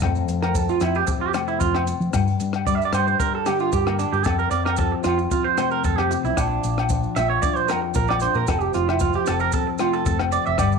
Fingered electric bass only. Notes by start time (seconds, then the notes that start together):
0.02 F2
0.28 F2
0.81 F2
1.61 F2
2.00 F3
2.14 G2
2.41 G2
2.93 G2
3.73 G2
4.13 G2
4.26 F2
4.51 F2
5.05 F2
5.84 F2
6.24 B1
6.37 A#1
6.64 A#1
7.16 A#1
7.96 A#1
8.35 A#2
8.49 F1
8.75 F1
9.28 F1
10.06 F1
10.47 F1
10.59 G1